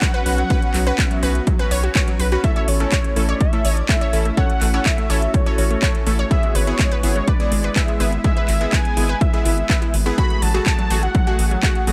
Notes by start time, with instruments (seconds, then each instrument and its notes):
Already playing: ambient pad B3 C#4 F#4, analog synth lead F#5
0.02 synth pluck F#3, supersaw synth C#4 F#4 B4, kick, clap, closed hi-hat
0.14 synth pluck B4, closed hi-hat
0.26 analog synth bass B1, supersaw synth C#4 F#4 B4, open hi-hat
0.38 synth pluck F#3, closed hi-hat
0.50 supersaw synth C#4 F#4 B4, synth pluck B4, kick, closed hi-hat
0.62 closed hi-hat
0.74 analog synth bass B1, synth pluck F#3, clap, open hi-hat
0.87 supersaw synth C#4 F#4 B4, synth pluck B4, closed hi-hat
0.98 kick, clap, closed hi-hat
1.06 analog synth lead E5
1.11 synth pluck F#3, closed hi-hat
1.23 analog synth bass B1, supersaw synth C#4 F#4 B4, synth pluck B4, open hi-hat
1.35 closed hi-hat
1.47 synth pluck F#3, kick, closed hi-hat
1.59 supersaw synth C#4 F#4 B4, synth pluck B4, closed hi-hat
1.71 analog synth bass B1, synth pluck C#5, open hi-hat
1.84 synth pluck F#4, closed hi-hat
1.95 supersaw synth C#4 F#4 C#5, synth pluck C#5, kick, clap, closed hi-hat
2.08 synth pluck F#3, closed hi-hat
2.19 analog synth bass B1, synth pluck B4, open hi-hat
2.32 supersaw synth C#4 F#4 B4, synth pluck F#4, closed hi-hat
2.44 ambient pad A3 C#4 E4, synth pluck A3, supersaw synth E4 A4, analog synth lead E5, kick, closed hi-hat
2.56 synth pluck C#5, closed hi-hat
2.68 analog synth bass A1, analog synth lead C#5, open hi-hat
2.80 synth pluck A3, supersaw synth C#4 E4 A4, closed hi-hat
2.92 synth pluck C#5, analog synth lead C#5, kick, clap, closed hi-hat
3.04 closed hi-hat
3.16 analog synth bass A1, synth pluck A3, supersaw synth C#4 E4 A4, open hi-hat
3.29 synth pluck C#5, analog synth lead D5, closed hi-hat
3.41 analog synth lead E5, kick, closed hi-hat
3.53 synth pluck A3, supersaw synth C#4 E4 A4, closed hi-hat
3.65 analog synth bass A1, synth pluck C#5, open hi-hat
3.77 closed hi-hat
3.89 synth pluck A3, supersaw synth C#4 E4 A4, analog synth lead E5, kick, clap, closed hi-hat
4.01 synth pluck C#5, closed hi-hat
4.13 analog synth bass A1, supersaw synth C#4 E4 A4, open hi-hat
4.25 synth pluck A3, closed hi-hat
4.37 supersaw synth C#4 E4 A4, ambient pad F#4, synth pluck C#5, analog synth lead F#5, kick, closed hi-hat
4.50 closed hi-hat
4.61 analog synth bass A1, synth pluck A3, clap, open hi-hat
4.74 supersaw synth C#4 E4 A4, synth pluck C#5, closed hi-hat
4.86 analog synth lead E5, kick, clap, closed hi-hat
4.98 synth pluck A3, closed hi-hat
5.10 analog synth bass A1, supersaw synth C#4 E4 A4, synth pluck C#5, open hi-hat
5.22 closed hi-hat
5.34 synth pluck A3, analog synth lead C#5, kick, closed hi-hat
5.46 supersaw synth C#4 E4 A4, synth pluck C#5, closed hi-hat
5.58 analog synth bass A1, analog synth lead C#5, open hi-hat
5.71 synth pluck A3, closed hi-hat
5.82 supersaw synth C#4 E4 A4, synth pluck C#5, kick, clap, closed hi-hat
5.95 closed hi-hat
6.07 analog synth bass A1, synth pluck A3, supersaw synth C#4 E4 A4, open hi-hat
6.19 synth pluck C#5, closed hi-hat
6.31 ambient pad G#3 B3 E4, supersaw synth B3 E4 G#4, analog synth lead E5, kick, closed hi-hat
6.43 synth pluck G#3, closed hi-hat
6.55 analog synth bass G#1, synth pluck B4, analog synth lead C#5, open hi-hat
6.67 supersaw synth B3 E4 G#4, closed hi-hat
6.79 synth pluck G#3, kick, clap, closed hi-hat
6.91 synth pluck B4, closed hi-hat
7.03 analog synth bass G#1, supersaw synth B3 E4 G#4, open hi-hat
7.16 synth pluck G#3, analog synth lead C#5, closed hi-hat
7.28 synth pluck B4, analog synth lead D5, kick, closed hi-hat
7.40 supersaw synth B3 E4 G#4, closed hi-hat
7.52 analog synth bass G#1, synth pluck G#3, open hi-hat
7.64 synth pluck B4, closed hi-hat
7.76 supersaw synth B3 E4 G#4, analog synth lead E5, kick, clap, closed hi-hat
7.88 synth pluck G#3, closed hi-hat
8.00 analog synth bass G#1, supersaw synth B3 E4 G#4, synth pluck B4, open hi-hat
8.12 closed hi-hat
8.24 synth pluck G#3, supersaw synth B3 E4 G#4, analog synth lead E5, kick, closed hi-hat
8.37 synth pluck B4, closed hi-hat
8.48 analog synth bass G#1, clap, open hi-hat
8.61 synth pluck G#3, supersaw synth B3 E4 G#4, closed hi-hat
8.73 synth pluck B4, analog synth lead G#5, kick, clap, closed hi-hat
8.85 closed hi-hat
8.97 analog synth bass G#1, synth pluck G#3, supersaw synth B3 E4 G#4, open hi-hat
9.09 synth pluck B4
9.21 analog synth lead E5, kick, closed hi-hat
9.33 synth pluck G#3, supersaw synth B3 E4 G#4, closed hi-hat
9.45 analog synth bass G#1, synth pluck E4, open hi-hat
9.58 closed hi-hat
9.69 supersaw synth B3 E4 B4, synth pluck E5, kick, clap, closed hi-hat
9.82 synth pluck E4, closed hi-hat
9.94 analog synth bass G#1, open hi-hat
10.06 supersaw synth B3 E4 G#4, synth pluck B4, closed hi-hat
10.18 supersaw synth A3 F#4 G#4, ambient pad A3 F#4, synth pluck F#4, analog synth lead B5, kick, closed hi-hat
10.30 closed hi-hat
10.42 analog synth bass A1, synth pluck F#3, analog synth lead A5, open hi-hat
10.54 supersaw synth A3 F#4 G#4, synth pluck F#4, closed hi-hat
10.66 analog synth lead A5, kick, clap, closed hi-hat
10.79 synth pluck F#3, closed hi-hat
10.90 analog synth bass A1, supersaw synth A3 F#4 G#4, synth pluck F#4, open hi-hat
11.03 analog synth lead F#5, closed hi-hat
11.15 synth pluck F#3, kick, closed hi-hat
11.27 supersaw synth A3 F#4 G#4, synth pluck F#4, closed hi-hat
11.39 analog synth bass A1, open hi-hat
11.51 synth pluck F#3
11.63 supersaw synth A3 F#4 G#4, synth pluck F#4, analog synth lead F#5, kick, clap, closed hi-hat
11.75 closed hi-hat
11.87 analog synth bass A1, synth pluck F#3, supersaw synth A3 F#4 G#4, open hi-hat